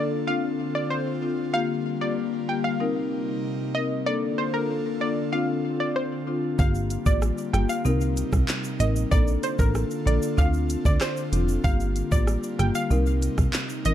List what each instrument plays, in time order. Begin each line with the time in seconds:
Already playing: analog synth pad D3 A#3 F4 A4, marimba A#3 D4 A4
0.27 marimba C4 D4 F4, analog synth pad C4 F4, synth pluck F5
0.75 synth pluck D5
0.90 synth pluck C5
1.22 marimba C4 D4 F4
1.54 analog synth pad G3 A#3, marimba A#3 F4 G4, synth pluck F5
2.01 marimba A#3 F4 G4, synth pluck D5
2.48 marimba A#3 F4 G4, synth pluck G5
2.64 synth pluck F5
2.80 analog synth pad C3 D#4, marimba C4 D#4 A#4
3.75 marimba C4 D#4 A#4, synth pluck D#5
4.06 analog synth pad D3 A#3 F4 A4, marimba A#3 D4 A4, synth pluck D5
4.38 synth pluck C5
4.54 marimba A#3 D4 A4, synth pluck A#4
5.01 marimba A#3 D4 A4, synth pluck D5
5.32 marimba C4 D4 F4, analog synth pad C4, synth pluck F5
5.80 synth pluck D5
5.96 synth pluck C5
6.27 marimba C4 D4 F4
6.58 analog synth bass G1, analog synth pad G3 A#3, marimba A#3 F4 G4, synth pluck F5, kick, shaker
6.75 shaker
6.90 closed hi-hat, shaker
7.06 analog synth bass A1, marimba A#3 F4 G4, synth pluck D5, kick, shaker
7.22 cross-stick, shaker
7.38 shaker
7.53 analog synth bass G1, marimba A#3 F4 G4, synth pluck G5, cross-stick, closed hi-hat, shaker
7.69 synth pluck F5, shaker
7.85 analog synth bass C2, analog synth pad C3 G3 D#4, marimba C4 D#4 A#4, shaker
8.00 shaker
8.16 closed hi-hat, shaker
8.33 analog synth bass C2, kick, cross-stick, shaker
8.48 clap, shaker
8.64 shaker
8.80 analog synth bass A1, marimba C4 D#4 A#4, synth pluck D#5, closed hi-hat, shaker
8.96 shaker
9.11 analog synth bass A#1, analog synth pad D3 F4 A4, marimba A#3 D4 A4, synth pluck D5, kick, shaker
9.27 shaker
9.43 synth pluck C5, closed hi-hat, shaker
9.59 analog synth bass A1, marimba A#3 D4 A4, synth pluck A#4, kick, shaker
9.75 cross-stick, shaker
9.90 shaker
10.06 analog synth bass A#1, marimba A#3 D4 A4, synth pluck D5, closed hi-hat, shaker
10.22 shaker
10.37 analog synth bass D2, marimba C4 D4 F4, analog synth pad C4, synth pluck F5, kick, shaker
10.54 shaker
10.69 closed hi-hat, shaker
10.85 analog synth bass D2, synth pluck D5, kick, shaker
11.01 synth pluck C5, cross-stick, clap, shaker
11.17 shaker
11.32 analog synth bass F1, marimba C4 D4 F4, closed hi-hat, shaker
11.48 shaker
11.64 analog synth bass G1, analog synth pad G3 A#3, marimba A#3 F4 G4, synth pluck F5, kick, shaker
11.80 shaker
11.96 closed hi-hat, shaker
12.11 analog synth bass A1, marimba A#3 F4 G4, synth pluck D5, kick, shaker
12.27 cross-stick, shaker
12.43 shaker
12.59 analog synth bass G1, marimba A#3 F4 G4, synth pluck G5, cross-stick, closed hi-hat, shaker
12.75 synth pluck F5, shaker
12.90 analog synth bass C2, analog synth pad C3 A#3 D#4, marimba C4 D#4 A#4, shaker
13.06 shaker
13.22 closed hi-hat, shaker
13.38 analog synth bass C2, kick, cross-stick, shaker
13.53 clap, shaker
13.69 shaker
13.85 analog synth bass A1, marimba C4 D#4 A#4, synth pluck D#5, closed hi-hat, shaker